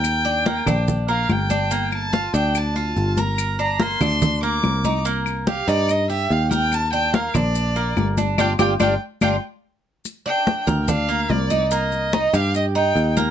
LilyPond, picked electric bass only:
\new Staff \with { instrumentName = "Picked electric bass" } { \clef bass \time 4/4 \key g \minor \tempo 4 = 144 ees,4. bes,,4. g,,4~ | g,,4. d,4. g,,4~ | g,,4. d,4. c,4~ | c,4. g,4. ees,4~ |
ees,4. bes,,4. g,,4 | g,,8 g,,8 g,,8 r8 g,,8 r4. | r4. d,4. c,4~ | c,4. g,4. ees,4 | }